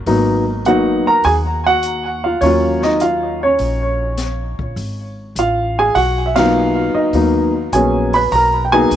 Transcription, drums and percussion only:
0, 0, Header, 1, 2, 480
1, 0, Start_track
1, 0, Tempo, 589391
1, 51, Time_signature, 4, 2, 24, 8
1, 7297, End_track
2, 0, Start_track
2, 0, Title_t, "Drums"
2, 52, Note_on_c, 9, 46, 43
2, 134, Note_off_c, 9, 46, 0
2, 531, Note_on_c, 9, 42, 47
2, 613, Note_off_c, 9, 42, 0
2, 1007, Note_on_c, 9, 46, 39
2, 1088, Note_off_c, 9, 46, 0
2, 1488, Note_on_c, 9, 42, 46
2, 1569, Note_off_c, 9, 42, 0
2, 1966, Note_on_c, 9, 46, 44
2, 2047, Note_off_c, 9, 46, 0
2, 2298, Note_on_c, 9, 38, 39
2, 2380, Note_off_c, 9, 38, 0
2, 2443, Note_on_c, 9, 42, 47
2, 2525, Note_off_c, 9, 42, 0
2, 2921, Note_on_c, 9, 46, 41
2, 3003, Note_off_c, 9, 46, 0
2, 3401, Note_on_c, 9, 42, 45
2, 3402, Note_on_c, 9, 38, 34
2, 3482, Note_off_c, 9, 42, 0
2, 3484, Note_off_c, 9, 38, 0
2, 3738, Note_on_c, 9, 36, 46
2, 3819, Note_off_c, 9, 36, 0
2, 3885, Note_on_c, 9, 46, 42
2, 3966, Note_off_c, 9, 46, 0
2, 4366, Note_on_c, 9, 42, 47
2, 4447, Note_off_c, 9, 42, 0
2, 4847, Note_on_c, 9, 46, 40
2, 4929, Note_off_c, 9, 46, 0
2, 5178, Note_on_c, 9, 51, 60
2, 5180, Note_on_c, 9, 38, 69
2, 5260, Note_off_c, 9, 51, 0
2, 5261, Note_off_c, 9, 38, 0
2, 5807, Note_on_c, 9, 46, 42
2, 5889, Note_off_c, 9, 46, 0
2, 6293, Note_on_c, 9, 42, 47
2, 6374, Note_off_c, 9, 42, 0
2, 6624, Note_on_c, 9, 46, 37
2, 6705, Note_off_c, 9, 46, 0
2, 6775, Note_on_c, 9, 46, 41
2, 6856, Note_off_c, 9, 46, 0
2, 7258, Note_on_c, 9, 42, 46
2, 7297, Note_off_c, 9, 42, 0
2, 7297, End_track
0, 0, End_of_file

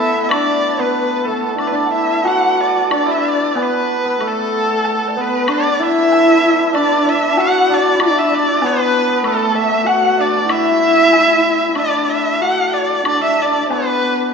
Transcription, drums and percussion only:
0, 0, Header, 1, 2, 480
1, 0, Start_track
1, 0, Tempo, 645856
1, 228, Time_signature, 4, 2, 24, 8
1, 3594, Tempo, 628931
1, 8874, Tempo, 647249
1, 10789, End_track
2, 0, Start_track
2, 0, Title_t, "Drums"
2, 233, Note_on_c, 9, 76, 61
2, 307, Note_off_c, 9, 76, 0
2, 1178, Note_on_c, 9, 76, 40
2, 1252, Note_off_c, 9, 76, 0
2, 1674, Note_on_c, 9, 77, 42
2, 1748, Note_off_c, 9, 77, 0
2, 2164, Note_on_c, 9, 76, 56
2, 2238, Note_off_c, 9, 76, 0
2, 2650, Note_on_c, 9, 77, 40
2, 2724, Note_off_c, 9, 77, 0
2, 3125, Note_on_c, 9, 76, 42
2, 3200, Note_off_c, 9, 76, 0
2, 3602, Note_on_c, 9, 77, 41
2, 3678, Note_off_c, 9, 77, 0
2, 4085, Note_on_c, 9, 76, 61
2, 4161, Note_off_c, 9, 76, 0
2, 4574, Note_on_c, 9, 77, 39
2, 4650, Note_off_c, 9, 77, 0
2, 5053, Note_on_c, 9, 76, 44
2, 5130, Note_off_c, 9, 76, 0
2, 5531, Note_on_c, 9, 77, 46
2, 5607, Note_off_c, 9, 77, 0
2, 6008, Note_on_c, 9, 76, 64
2, 6084, Note_off_c, 9, 76, 0
2, 6480, Note_on_c, 9, 77, 42
2, 6557, Note_off_c, 9, 77, 0
2, 6957, Note_on_c, 9, 76, 47
2, 7033, Note_off_c, 9, 76, 0
2, 7432, Note_on_c, 9, 77, 48
2, 7508, Note_off_c, 9, 77, 0
2, 7913, Note_on_c, 9, 76, 64
2, 7989, Note_off_c, 9, 76, 0
2, 8395, Note_on_c, 9, 77, 44
2, 8472, Note_off_c, 9, 77, 0
2, 8874, Note_on_c, 9, 76, 43
2, 8948, Note_off_c, 9, 76, 0
2, 9836, Note_on_c, 9, 76, 62
2, 9910, Note_off_c, 9, 76, 0
2, 10321, Note_on_c, 9, 77, 45
2, 10395, Note_off_c, 9, 77, 0
2, 10789, End_track
0, 0, End_of_file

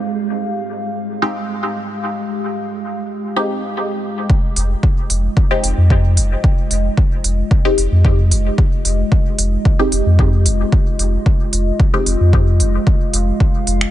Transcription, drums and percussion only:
0, 0, Header, 1, 2, 480
1, 0, Start_track
1, 0, Key_signature, -4, "minor"
1, 0, Tempo, 535714
1, 10, Time_signature, 4, 2, 24, 8
1, 12462, End_track
2, 0, Start_track
2, 0, Title_t, "Drums"
2, 3849, Note_on_c, 9, 36, 111
2, 3939, Note_off_c, 9, 36, 0
2, 4090, Note_on_c, 9, 46, 83
2, 4179, Note_off_c, 9, 46, 0
2, 4329, Note_on_c, 9, 36, 99
2, 4419, Note_off_c, 9, 36, 0
2, 4569, Note_on_c, 9, 46, 84
2, 4659, Note_off_c, 9, 46, 0
2, 4809, Note_on_c, 9, 36, 108
2, 4899, Note_off_c, 9, 36, 0
2, 5050, Note_on_c, 9, 46, 80
2, 5140, Note_off_c, 9, 46, 0
2, 5289, Note_on_c, 9, 36, 106
2, 5379, Note_off_c, 9, 36, 0
2, 5530, Note_on_c, 9, 46, 84
2, 5619, Note_off_c, 9, 46, 0
2, 5769, Note_on_c, 9, 36, 120
2, 5859, Note_off_c, 9, 36, 0
2, 6010, Note_on_c, 9, 46, 80
2, 6100, Note_off_c, 9, 46, 0
2, 6249, Note_on_c, 9, 36, 105
2, 6339, Note_off_c, 9, 36, 0
2, 6490, Note_on_c, 9, 46, 86
2, 6579, Note_off_c, 9, 46, 0
2, 6729, Note_on_c, 9, 36, 115
2, 6819, Note_off_c, 9, 36, 0
2, 6970, Note_on_c, 9, 46, 81
2, 7059, Note_off_c, 9, 46, 0
2, 7209, Note_on_c, 9, 36, 104
2, 7299, Note_off_c, 9, 36, 0
2, 7450, Note_on_c, 9, 46, 86
2, 7539, Note_off_c, 9, 46, 0
2, 7689, Note_on_c, 9, 36, 120
2, 7779, Note_off_c, 9, 36, 0
2, 7930, Note_on_c, 9, 46, 79
2, 8020, Note_off_c, 9, 46, 0
2, 8169, Note_on_c, 9, 36, 103
2, 8259, Note_off_c, 9, 36, 0
2, 8409, Note_on_c, 9, 46, 87
2, 8499, Note_off_c, 9, 46, 0
2, 8649, Note_on_c, 9, 36, 114
2, 8739, Note_off_c, 9, 36, 0
2, 8889, Note_on_c, 9, 46, 82
2, 8979, Note_off_c, 9, 46, 0
2, 9129, Note_on_c, 9, 36, 109
2, 9219, Note_off_c, 9, 36, 0
2, 9369, Note_on_c, 9, 46, 83
2, 9459, Note_off_c, 9, 46, 0
2, 9609, Note_on_c, 9, 36, 122
2, 9699, Note_off_c, 9, 36, 0
2, 9850, Note_on_c, 9, 46, 80
2, 9939, Note_off_c, 9, 46, 0
2, 10089, Note_on_c, 9, 36, 104
2, 10179, Note_off_c, 9, 36, 0
2, 10330, Note_on_c, 9, 46, 86
2, 10419, Note_off_c, 9, 46, 0
2, 10569, Note_on_c, 9, 36, 119
2, 10659, Note_off_c, 9, 36, 0
2, 10809, Note_on_c, 9, 46, 81
2, 10899, Note_off_c, 9, 46, 0
2, 11049, Note_on_c, 9, 36, 107
2, 11139, Note_off_c, 9, 36, 0
2, 11289, Note_on_c, 9, 46, 82
2, 11379, Note_off_c, 9, 46, 0
2, 11529, Note_on_c, 9, 36, 113
2, 11619, Note_off_c, 9, 36, 0
2, 11769, Note_on_c, 9, 46, 82
2, 11859, Note_off_c, 9, 46, 0
2, 12009, Note_on_c, 9, 36, 99
2, 12099, Note_off_c, 9, 36, 0
2, 12250, Note_on_c, 9, 46, 79
2, 12339, Note_off_c, 9, 46, 0
2, 12376, Note_on_c, 9, 26, 72
2, 12462, Note_off_c, 9, 26, 0
2, 12462, End_track
0, 0, End_of_file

